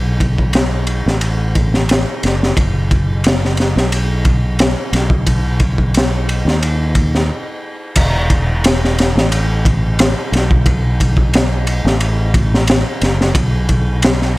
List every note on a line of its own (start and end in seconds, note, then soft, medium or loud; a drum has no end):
0.00 1.03 B1 medium
0.20 kick medium
0.20 ride medium
0.38 kick medium
0.53 snare loud
0.53 ride medium
0.87 ride medium
1.06 2.04 A1 medium
1.06 snare soft
1.21 ride medium
1.55 kick medium
1.55 ride medium
1.74 snare soft
1.89 snare loud
1.89 ride medium
2.23 2.53 F#1 medium
2.23 snare soft
2.23 ride medium
2.43 snare soft
2.57 3.72 F#1 medium
2.57 kick loud
2.57 ride medium
2.91 kick medium
2.91 ride medium
3.24 snare loud
3.24 ride medium
3.45 snare soft
3.57 snare soft
3.57 ride medium
3.76 4.74 B1 medium
3.76 snare medium
3.92 ride medium
4.25 kick medium
4.25 ride medium
4.59 snare loud
4.59 ride medium
4.93 6.42 B1 loud
4.93 snare soft
4.93 ride medium
5.10 kick loud
5.27 kick loud
5.27 ride medium
5.60 kick medium
5.60 ride medium
5.78 kick medium
5.94 snare loud
5.94 ride medium
6.29 ride medium
6.45 7.29 D#2 medium
6.45 snare soft
6.63 ride medium
6.95 kick medium
6.95 ride medium
7.15 snare soft
7.96 9.12 E1 medium
7.96 kick loud
7.96 crash medium
7.96 ride loud
8.30 kick medium
8.30 ride medium
8.64 snare loud
8.64 ride medium
8.85 snare soft
8.98 snare medium
8.98 ride medium
9.15 10.13 A1 medium
9.15 snare medium
9.32 ride medium
9.65 kick medium
9.65 ride medium
9.99 snare loud
9.99 ride medium
10.32 11.82 B1 loud
10.32 snare soft
10.32 ride medium
10.51 kick medium
10.66 kick loud
10.66 ride medium
11.00 kick medium
11.00 ride medium
11.17 kick medium
11.34 snare loud
11.34 ride medium
11.67 ride medium
11.85 12.82 A1 loud
11.85 snare medium
12.00 ride medium
12.34 kick medium
12.34 ride medium
12.54 snare medium
12.67 snare loud
12.67 ride medium
13.01 13.32 F#1 medium
13.01 snare soft
13.01 ride medium
13.21 snare soft
13.35 14.38 B1 medium
13.35 kick loud
13.35 ride medium
13.69 kick medium
13.69 ride medium
14.02 snare loud
14.02 ride medium
14.22 snare soft